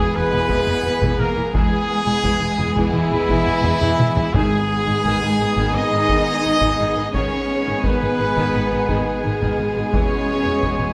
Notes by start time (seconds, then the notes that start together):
Already playing: B2 E3 G#3 B3 E4 G#4 G#5
0.00 E3
0.13 E1 E3 B3 B4
0.32 E1 E3, taiko low-mid
0.49 E1 E3, taiko
0.67 taiko low-mid
0.84 E1 E3
1.01 E1 E3, taiko
1.18 E1 E3 A#3 A#4
1.36 E1 E3
1.53 E1 E3 G#3 B3 E4 G#4 G#5, taiko
2.06 E1 E3
2.23 E1 E3, taiko
2.41 E1 E3
2.58 E1 E3, taiko low-mid
2.75 E1 E3, taiko
2.94 E1 E3 E4
3.11 E1 E3, taiko low-mid
3.28 E1 E3, taiko
3.46 taiko low-mid
3.63 E1 E3, taiko low-mid
3.81 E1 E3, taiko low-mid
3.98 E1 E3, taiko mid
4.16 E1 E3, taiko low
4.33 G#1 G#2 D#3 G#3 B3 D#4 G#4 G#5, taiko
4.87 G#1 D#3
5.04 G#1 D#3, taiko
5.23 G#1 D#3
5.39 G#1 D#3
5.57 G#1 D#3, taiko
5.74 G#1 D#3 D#4 D#5
5.92 G#1 D#3
6.08 G#1 D#3, taiko
6.45 G#1 D#3
6.61 G#1 D#3, taiko
6.79 G#1 D#3
6.96 G#1 D#3
7.13 G#1 B2 D#3 G#3 B3 C#4 D#4 G#4 C#5 G#5, taiko
7.67 G#1 D#3
7.84 G#1 D#3 B3 B4, taiko
8.02 G#1 D#3
8.19 G#1 D#3
8.36 G#1 D#3, taiko
8.55 G#1 D#3
8.72 G#1 D#3
8.89 G#1 D#3, taiko
9.24 G#1 D#3
9.41 G#1 D#3, taiko
9.58 G#1 D#3
9.75 G#1 D#3
9.93 E1 E3 C#4 E4 C#5, taiko
10.45 E1 E3
10.63 E1 E3, taiko
10.80 E1 E3